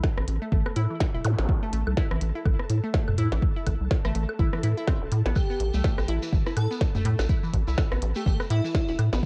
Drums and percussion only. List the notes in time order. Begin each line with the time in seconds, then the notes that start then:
0.04 kick, snare, low bongo, high woodblock
0.18 cross-stick
0.28 closed hi-hat
0.52 kick
0.66 cross-stick, low bongo, high woodblock
0.76 closed hi-hat
1.00 kick, snare
1.24 closed hi-hat, low bongo, high woodblock
1.38 snare
1.49 kick
1.73 closed hi-hat
1.87 low bongo, high woodblock
1.97 kick, snare
2.11 cross-stick
2.21 closed hi-hat
2.46 kick, low bongo, high woodblock
2.59 cross-stick
2.70 closed hi-hat
2.94 kick, snare
3.08 mid tom, low bongo, high woodblock
3.18 closed hi-hat
3.32 snare
3.42 kick
3.67 kick, closed hi-hat, low bongo, high woodblock
3.91 kick, snare
4.05 cross-stick
4.15 closed hi-hat
4.29 low bongo, high woodblock
4.39 kick
4.53 cross-stick
4.63 closed hi-hat
4.87 kick, snare, low bongo, high woodblock
5.12 closed hi-hat
5.26 snare
5.35 kick, low bongo, high woodblock, shekere
5.50 shekere
5.60 closed hi-hat
5.74 shekere
5.84 kick, snare, shekere
5.98 cross-stick, low bongo, high woodblock, shekere
6.08 closed hi-hat
6.23 shekere
6.33 kick, shekere
6.46 cross-stick, shekere
6.57 closed hi-hat, low bongo, high woodblock
6.71 shekere
6.81 kick, snare, shekere
6.95 mid tom, shekere
7.05 closed hi-hat
7.19 snare, low bongo, high woodblock, shekere
7.29 kick
7.43 shekere
7.54 kick, closed hi-hat
7.68 shekere
7.78 kick, snare, low bongo, high woodblock, shekere
7.92 cross-stick, shekere
8.02 closed hi-hat
8.15 shekere
8.26 kick, shekere
8.40 cross-stick, low bongo, high woodblock, shekere
8.50 closed hi-hat
8.65 shekere
8.75 kick, snare, shekere
8.88 shekere
8.99 closed hi-hat, low bongo, high woodblock
9.13 snare, shekere